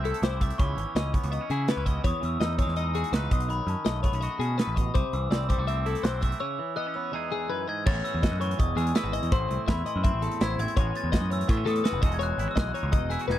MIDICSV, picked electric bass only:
0, 0, Header, 1, 2, 480
1, 0, Start_track
1, 0, Key_signature, 4, "major"
1, 0, Tempo, 363196
1, 772, Time_signature, 4, 2, 24, 8
1, 17692, End_track
2, 0, Start_track
2, 0, Title_t, "Picked electric bass"
2, 0, Program_c, 0, 34
2, 0, Note_on_c, 0, 36, 93
2, 155, Note_off_c, 0, 36, 0
2, 293, Note_on_c, 0, 36, 85
2, 669, Note_off_c, 0, 36, 0
2, 783, Note_on_c, 0, 37, 108
2, 967, Note_off_c, 0, 37, 0
2, 1018, Note_on_c, 0, 32, 85
2, 1109, Note_off_c, 0, 32, 0
2, 1257, Note_on_c, 0, 37, 75
2, 1537, Note_off_c, 0, 37, 0
2, 1637, Note_on_c, 0, 37, 87
2, 1815, Note_off_c, 0, 37, 0
2, 1980, Note_on_c, 0, 49, 84
2, 2260, Note_off_c, 0, 49, 0
2, 2338, Note_on_c, 0, 37, 90
2, 2618, Note_off_c, 0, 37, 0
2, 2700, Note_on_c, 0, 40, 91
2, 2792, Note_off_c, 0, 40, 0
2, 2947, Note_on_c, 0, 40, 88
2, 3130, Note_off_c, 0, 40, 0
2, 3172, Note_on_c, 0, 40, 86
2, 3455, Note_off_c, 0, 40, 0
2, 3527, Note_on_c, 0, 40, 93
2, 4001, Note_off_c, 0, 40, 0
2, 4130, Note_on_c, 0, 37, 89
2, 4320, Note_off_c, 0, 37, 0
2, 4380, Note_on_c, 0, 35, 87
2, 4755, Note_off_c, 0, 35, 0
2, 4846, Note_on_c, 0, 42, 88
2, 4944, Note_off_c, 0, 42, 0
2, 5101, Note_on_c, 0, 35, 85
2, 5382, Note_off_c, 0, 35, 0
2, 5449, Note_on_c, 0, 35, 77
2, 5641, Note_off_c, 0, 35, 0
2, 5803, Note_on_c, 0, 47, 82
2, 6092, Note_off_c, 0, 47, 0
2, 6178, Note_on_c, 0, 33, 82
2, 6462, Note_off_c, 0, 33, 0
2, 6545, Note_on_c, 0, 36, 97
2, 6638, Note_off_c, 0, 36, 0
2, 6782, Note_on_c, 0, 36, 91
2, 6971, Note_off_c, 0, 36, 0
2, 7011, Note_on_c, 0, 36, 94
2, 7299, Note_off_c, 0, 36, 0
2, 7376, Note_on_c, 0, 36, 96
2, 7851, Note_off_c, 0, 36, 0
2, 7978, Note_on_c, 0, 35, 88
2, 8359, Note_off_c, 0, 35, 0
2, 10396, Note_on_c, 0, 33, 111
2, 10582, Note_off_c, 0, 33, 0
2, 10764, Note_on_c, 0, 40, 84
2, 10947, Note_off_c, 0, 40, 0
2, 10989, Note_on_c, 0, 42, 86
2, 11272, Note_off_c, 0, 42, 0
2, 11362, Note_on_c, 0, 28, 98
2, 11546, Note_off_c, 0, 28, 0
2, 11582, Note_on_c, 0, 40, 99
2, 11773, Note_off_c, 0, 40, 0
2, 11945, Note_on_c, 0, 32, 82
2, 12135, Note_off_c, 0, 32, 0
2, 12194, Note_on_c, 0, 40, 74
2, 12286, Note_off_c, 0, 40, 0
2, 12321, Note_on_c, 0, 33, 115
2, 12504, Note_off_c, 0, 33, 0
2, 12555, Note_on_c, 0, 36, 82
2, 12646, Note_off_c, 0, 36, 0
2, 12791, Note_on_c, 0, 40, 97
2, 12978, Note_off_c, 0, 40, 0
2, 13159, Note_on_c, 0, 42, 97
2, 13342, Note_off_c, 0, 42, 0
2, 13397, Note_on_c, 0, 33, 86
2, 13581, Note_off_c, 0, 33, 0
2, 13762, Note_on_c, 0, 33, 96
2, 13944, Note_off_c, 0, 33, 0
2, 13988, Note_on_c, 0, 33, 95
2, 14081, Note_off_c, 0, 33, 0
2, 14230, Note_on_c, 0, 33, 116
2, 14416, Note_off_c, 0, 33, 0
2, 14586, Note_on_c, 0, 40, 82
2, 14773, Note_off_c, 0, 40, 0
2, 14809, Note_on_c, 0, 42, 75
2, 15096, Note_off_c, 0, 42, 0
2, 15185, Note_on_c, 0, 45, 105
2, 15372, Note_off_c, 0, 45, 0
2, 15407, Note_on_c, 0, 45, 94
2, 15600, Note_off_c, 0, 45, 0
2, 15762, Note_on_c, 0, 29, 92
2, 15863, Note_off_c, 0, 29, 0
2, 15901, Note_on_c, 0, 28, 101
2, 16276, Note_off_c, 0, 28, 0
2, 16359, Note_on_c, 0, 32, 86
2, 16460, Note_off_c, 0, 32, 0
2, 16603, Note_on_c, 0, 35, 99
2, 16797, Note_off_c, 0, 35, 0
2, 16955, Note_on_c, 0, 37, 108
2, 17151, Note_off_c, 0, 37, 0
2, 17194, Note_on_c, 0, 28, 84
2, 17390, Note_off_c, 0, 28, 0
2, 17555, Note_on_c, 0, 28, 91
2, 17692, Note_off_c, 0, 28, 0
2, 17692, End_track
0, 0, End_of_file